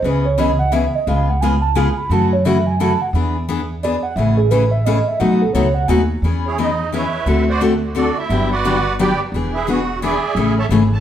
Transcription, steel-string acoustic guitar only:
0.04 0.25 C#3 medium
0.04 0.25 E3 medium
0.04 0.26 B3 medium
0.04 0.26 C#4 medium
0.04 0.26 G#4 medium
0.38 0.49 C#3 loud
0.38 0.49 E3 loud
0.38 0.49 B3 medium
0.38 0.50 C#4 medium
0.38 0.50 G#4 loud
0.72 0.83 C#3 medium
0.72 0.84 E3 medium
0.72 0.84 B3 loud
0.72 0.84 C#4 medium
0.72 0.84 G#4 medium
1.07 1.28 C#3 medium
1.07 1.28 G#3 medium
1.07 1.28 B3 medium
1.07 1.29 F4 medium
1.07 1.29 G#4 medium
1.42 1.53 C#3 medium
1.42 1.53 G#3 medium
1.42 1.53 B3 medium
1.42 1.54 F4 loud
1.42 1.54 G#4 medium
1.75 1.87 C#3 medium
1.75 1.87 G#3 medium
1.75 1.87 B3 medium
1.75 1.87 F4 medium
1.75 1.88 G#4 medium
2.11 2.32 C#3 medium
2.11 2.32 E3 medium
2.11 2.32 A3 medium
2.11 2.32 C#4 medium
2.11 2.32 F#4 medium
2.45 2.56 C#3 medium
2.45 2.56 E3 medium
2.45 2.57 A3 medium
2.45 2.57 C#4 medium
2.45 2.57 F#4 medium
2.80 2.91 C#3 medium
2.80 2.91 E3 medium
2.80 2.91 A3 medium
2.80 2.91 C#4 loud
2.80 2.91 F#4 loud
3.15 3.35 E3 medium
3.15 3.36 B3 medium
3.15 3.36 D4 medium
3.15 3.36 G#4 medium
3.49 3.60 E3 medium
3.49 3.60 B3 medium
3.49 3.60 D4 medium
3.49 3.60 G#4 loud
3.83 3.94 E3 medium
3.83 3.95 B3 medium
3.83 3.95 D4 medium
3.83 3.95 G#4 loud
4.17 4.38 C#3 medium
4.17 4.38 E3 medium
4.17 4.39 A3 medium
4.17 4.39 C#4 medium
4.17 4.39 G#4 medium
4.51 4.62 C#3 medium
4.51 4.63 E3 loud
4.51 4.63 A3 medium
4.51 4.63 C#4 loud
4.51 4.63 G#4 loud
4.86 4.97 C#3 medium
4.86 4.97 E3 loud
4.86 4.97 A3 medium
4.86 4.98 C#4 loud
4.86 4.98 G#4 loud
5.20 5.41 B2 medium
5.20 5.41 F#3 medium
5.20 5.41 A3 medium
5.20 5.42 D#4 medium
5.20 5.42 F#4 medium
5.55 5.66 B2 medium
5.55 5.66 F#3 medium
5.55 5.66 A3 loud
5.55 5.66 D#4 loud
5.55 5.66 F#4 loud
5.88 6.00 B2 medium
5.88 6.00 F#3 medium
5.88 6.00 A3 medium
5.88 6.00 D#4 loud
5.88 6.01 F#4 loud
6.24 6.45 E3 medium
6.24 6.45 B3 medium
6.24 6.45 C#4 medium
6.24 6.45 G#4 medium
6.58 6.69 E3 medium
6.58 6.69 B3 medium
6.58 6.69 C#4 medium
6.58 6.70 G#4 medium
6.92 7.03 E3 medium
6.92 7.04 B3 medium
6.92 7.04 C#4 medium
6.92 7.04 G#4 loud
7.26 7.48 D3 medium
7.26 7.48 A3 medium
7.26 7.48 C4 medium
7.26 7.48 F#4 medium
7.26 7.48 A4 medium
7.61 7.72 D3 medium
7.61 7.72 A3 medium
7.61 7.72 C4 medium
7.61 7.73 F#4 loud
7.61 7.73 A4 medium
7.95 8.06 D3 medium
7.95 8.07 A3 medium
7.95 8.07 C4 medium
7.95 8.07 F#4 medium
7.95 8.07 A4 medium
8.30 8.51 D3 medium
8.30 8.51 F#3 medium
8.30 8.51 B3 medium
8.30 8.51 D4 medium
8.30 8.52 G4 medium
8.65 8.76 D3 medium
8.65 8.76 F#3 medium
8.65 8.76 B3 medium
8.65 8.76 D4 medium
8.65 8.76 G4 medium
8.99 9.10 D3 medium
8.99 9.10 F#3 loud
8.99 9.10 B3 medium
8.99 9.11 D4 medium
8.99 9.11 G4 medium
9.34 9.54 E3 medium
9.34 9.55 B3 medium
9.34 9.55 D4 medium
9.34 9.55 G#4 medium
9.67 9.78 E3 medium
9.67 9.79 B3 medium
9.67 9.79 D4 medium
9.67 9.79 G#4 medium
10.02 10.13 E3 medium
10.02 10.13 B3 medium
10.02 10.14 D4 medium
10.02 10.14 G#4 loud
10.36 10.57 C#3 medium
10.36 10.57 E3 medium
10.36 10.57 A3 medium
10.36 10.57 C#4 medium
10.36 10.57 G#4 medium
10.71 10.81 C#3 medium
10.71 10.82 E3 medium
10.71 10.82 A3 medium
10.71 10.82 C#4 medium
10.71 10.82 G#4 loud

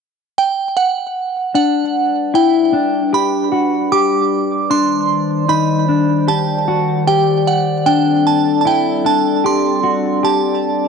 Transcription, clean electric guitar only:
1.54 2.33 D4 medium
2.34 2.73 E4 medium
2.73 3.12 D4 medium
3.13 3.51 G4 medium
3.52 3.91 F#4 medium
3.92 4.70 G4 medium
4.70 5.48 D4 medium
5.49 5.88 D#4 medium
5.89 6.28 D4 medium
6.28 6.67 G4 medium
6.68 7.07 F#4 medium
7.07 7.86 G4 medium
7.86 8.65 D4 medium
8.65 9.05 E4 medium
9.05 9.44 D4 medium
9.44 9.83 G4 medium
9.83 10.23 F#4 medium
10.23 10.88 G4 medium

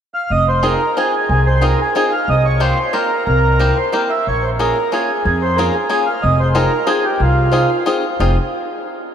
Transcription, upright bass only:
0.30 0.74 F1 medium
1.29 1.72 C2 medium
2.28 2.71 C2 medium
3.27 3.70 C2 medium
4.27 4.70 A#1 medium
5.25 5.68 F2 medium
6.24 6.66 F1 medium
7.20 7.63 C2 medium
8.20 8.36 F1 medium

